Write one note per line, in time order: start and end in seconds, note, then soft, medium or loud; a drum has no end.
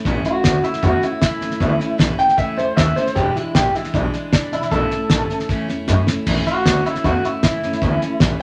0.05 0.20 A1 medium
0.05 0.25 A2 medium
0.05 0.25 E3 medium
0.05 0.26 A3 medium
0.05 0.25 C#4 loud
0.05 0.24 E4 medium
0.05 kick loud
0.05 snare soft
0.24 0.43 A3 soft
0.24 0.44 C#4 soft
0.24 0.45 E4 soft
0.24 0.63 F#4 medium
0.24 muted upright bass stroke medium
0.24 snare soft
0.43 0.59 D2 medium
0.43 0.64 E3 medium
0.43 0.64 A3 medium
0.43 0.63 C#4 medium
0.43 0.61 E4 medium
0.43 kick medium
0.43 snare loud
0.43 hi-hat pedal medium
0.62 0.81 A3 soft
0.62 0.82 C#4 medium
0.62 0.83 E4 soft
0.62 0.83 E4 medium
0.62 muted upright bass stroke medium
0.62 snare soft
0.73 snare soft
0.81 0.98 E2 medium
0.81 1.02 A2 medium
0.81 1.03 E3 medium
0.81 1.03 A3 medium
0.81 1.02 C#4 medium
0.81 1.00 E4 medium
0.81 1.04 F#4 medium
0.81 kick loud
0.81 snare soft
1.02 1.21 A3 soft
1.02 1.22 C#4 soft
1.02 1.22 E4 medium
1.02 1.21 E4 medium
1.02 muted upright bass stroke medium
1.02 snare soft
1.21 1.37 F#2 medium
1.21 1.41 E3 medium
1.21 1.42 A3 medium
1.21 1.41 C#4 medium
1.21 1.98 E4 medium
1.21 1.40 E4 medium
1.21 kick medium
1.21 snare loud
1.21 hi-hat pedal medium
1.41 1.56 F#2 medium
1.41 1.60 A3 soft
1.41 1.60 C#4 medium
1.41 1.61 E4 medium
1.41 snare soft
1.51 snare soft
1.60 1.75 D2 medium
1.60 1.80 A2 medium
1.60 1.81 E3 medium
1.60 1.81 A3 medium
1.60 1.79 C#4 medium
1.60 1.78 E4 medium
1.60 kick loud
1.60 snare soft
1.80 1.98 A3 medium
1.80 1.99 C#4 medium
1.80 2.00 E4 medium
1.80 muted upright bass stroke medium
1.80 snare soft
1.98 2.14 A1 medium
1.98 2.19 E3 medium
1.98 2.19 A3 medium
1.98 2.19 C#4 medium
1.98 2.17 E4 medium
1.98 kick medium
1.98 snare loud
1.98 hi-hat pedal loud
2.18 2.37 A3 soft
2.18 2.38 C#4 medium
2.18 2.38 E4 medium
2.18 2.38 G5 loud
2.18 muted upright bass stroke medium
2.18 snare soft
2.29 snare soft
2.37 2.53 C#2 medium
2.37 2.58 A2 medium
2.37 2.58 E3 medium
2.37 2.58 A3 medium
2.37 2.56 C#4 medium
2.37 2.55 E4 medium
2.37 2.58 E5 medium
2.37 kick loud
2.37 snare soft
2.56 2.72 E2 medium
2.56 2.76 A3 soft
2.56 2.77 C#4 soft
2.56 2.77 E4 medium
2.56 2.77 C5 medium
2.56 snare soft
2.76 2.92 D#2 medium
2.76 2.96 E3 medium
2.76 2.97 A3 medium
2.76 2.97 C#4 medium
2.76 2.95 E4 medium
2.76 2.96 E5 medium
2.76 kick medium
2.76 snare loud
2.76 hi-hat pedal medium
2.96 3.16 A3 soft
2.96 3.17 C#4 medium
2.96 3.16 E4 medium
2.96 3.16 C5 medium
2.96 muted upright bass stroke medium
2.96 snare soft
3.06 snare soft
3.15 3.31 E1 medium
3.15 3.36 E2 medium
3.15 3.36 B2 medium
3.15 3.36 E3 medium
3.15 3.36 G#3 medium
3.15 3.35 D4 medium
3.15 3.34 E4 medium
3.15 3.36 G4 medium
3.15 kick medium
3.15 snare soft
3.35 3.53 E3 soft
3.35 3.54 G#3 soft
3.35 3.56 D4 soft
3.35 3.55 E4 medium
3.35 muted upright bass stroke medium
3.35 snare soft
3.55 3.70 A1 medium
3.55 3.74 E3 medium
3.55 3.74 G#3 medium
3.55 3.74 D4 medium
3.55 3.72 E4 medium
3.55 3.75 G4 loud
3.55 kick loud
3.55 snare loud
3.55 hi-hat pedal medium
3.73 3.93 E3 soft
3.73 3.94 G#3 soft
3.73 3.94 D4 medium
3.73 3.93 E4 medium
3.73 3.94 E4 loud
3.73 muted upright bass stroke medium
3.73 snare soft
3.84 snare soft
3.94 4.09 B1 medium
3.94 4.13 E2 medium
3.94 4.13 B2 medium
3.94 4.14 E3 medium
3.94 4.14 G#3 medium
3.94 4.13 D4 medium
3.94 4.14 D4 medium
3.94 4.12 E4 medium
3.94 kick loud
3.94 snare soft
4.13 4.31 E3 soft
4.13 4.33 G#3 soft
4.13 4.34 D4 medium
4.13 4.33 E4 medium
4.13 muted upright bass stroke medium
4.13 snare soft
4.32 4.47 D2 medium
4.32 4.52 E3 medium
4.32 4.53 G#3 medium
4.32 4.53 D4 medium
4.32 4.52 E4 medium
4.32 kick medium
4.32 snare loud
4.32 hi-hat pedal medium
4.52 4.67 B1 medium
4.52 4.72 E3 soft
4.52 4.73 G#3 soft
4.52 4.73 D4 medium
4.52 4.71 E4 medium
4.52 4.72 E4 medium
4.52 snare soft
4.62 snare soft
4.71 4.86 A1 medium
4.71 4.91 A2 medium
4.71 4.92 E3 medium
4.71 4.92 A3 medium
4.71 4.92 C#4 medium
4.71 4.91 E4 medium
4.71 5.47 A4 loud
4.71 kick loud
4.71 snare soft
4.91 5.12 C#4 soft
4.91 5.11 E4 medium
4.91 muted upright bass stroke medium
4.91 snare soft
4.95 5.11 A3 soft
5.10 5.25 A1 medium
5.10 5.30 E3 medium
5.10 5.31 A3 medium
5.10 5.30 C#4 medium
5.10 kick medium
5.10 snare loud
5.10 hi-hat pedal medium
5.14 5.28 E4 medium
5.30 5.50 A3 soft
5.30 5.50 C#4 medium
5.30 5.49 E4 medium
5.30 muted upright bass stroke medium
5.30 snare soft
5.40 snare soft
5.49 5.64 C#2 loud
5.49 5.69 A2 medium
5.49 5.69 E3 medium
5.49 5.69 A3 medium
5.49 5.68 C#4 loud
5.49 5.67 E4 loud
5.49 kick loud
5.49 snare soft
5.68 5.83 E2 medium
5.68 5.87 A3 soft
5.68 5.88 C#4 medium
5.68 5.88 E4 medium
5.68 snare soft
5.87 6.02 F#2 medium
5.87 6.07 E3 medium
5.87 6.08 A3 medium
5.87 6.07 C#4 medium
5.87 6.05 E4 medium
5.87 kick medium
5.87 snare medium
5.87 hi-hat pedal medium
6.07 6.26 A3 medium
6.07 6.27 C#4 medium
6.07 6.26 E4 medium
6.07 muted upright bass stroke medium
6.07 snare medium
6.26 6.41 A1 medium
6.26 6.46 A2 medium
6.26 6.46 E3 medium
6.26 6.47 A3 medium
6.26 6.46 C#4 medium
6.26 6.44 E4 medium
6.26 kick loud
6.26 snare soft
6.26 crash medium
6.45 6.65 A3 soft
6.45 6.66 C#4 soft
6.45 6.65 E4 soft
6.45 6.84 F#4 medium
6.45 muted upright bass stroke medium
6.45 snare soft
6.65 6.80 D2 medium
6.65 6.85 E3 medium
6.65 6.85 A3 medium
6.65 6.85 C#4 medium
6.65 6.84 E4 medium
6.65 kick medium
6.65 snare loud
6.65 hi-hat pedal medium
6.85 7.04 A3 soft
6.85 7.05 C#4 medium
6.85 7.04 E4 medium
6.85 muted upright bass stroke medium
6.85 snare soft
6.95 snare soft
7.04 7.19 E2 loud
7.04 7.24 A2 medium
7.04 7.24 E3 medium
7.04 7.24 A3 medium
7.04 7.24 C#4 medium
7.04 7.22 E4 medium
7.04 7.25 F#4 medium
7.04 kick loud
7.04 snare soft
7.23 7.43 A3 soft
7.23 7.43 C#4 soft
7.23 7.43 E4 soft
7.23 7.43 E4 medium
7.23 muted upright bass stroke medium
7.23 snare soft
7.43 7.58 F#2 medium
7.43 7.62 E3 medium
7.43 7.63 A3 medium
7.43 7.63 C#4 medium
7.43 8.19 E4 medium
7.43 7.62 E4 medium
7.43 kick medium
7.43 snare loud
7.43 hi-hat pedal medium
7.63 7.77 F#2 medium
7.63 7.82 A3 soft
7.63 7.83 C#4 medium
7.63 7.82 E4 medium
7.63 snare soft
7.72 snare soft
7.81 7.96 D2 medium
7.81 8.01 A2 medium
7.81 8.02 E3 medium
7.81 8.02 A3 medium
7.81 8.02 C#4 medium
7.81 8.01 E4 medium
7.81 kick loud
7.81 snare soft
8.01 8.22 A3 medium
8.01 8.22 C#4 soft
8.01 8.21 E4 medium
8.01 muted upright bass stroke medium
8.01 snare soft
8.20 8.35 A1 medium
8.20 8.41 E3 medium
8.20 8.41 A3 medium
8.20 8.41 C#4 medium
8.20 kick loud
8.20 snare loud
8.20 hi-hat pedal loud
8.24 8.39 E4 medium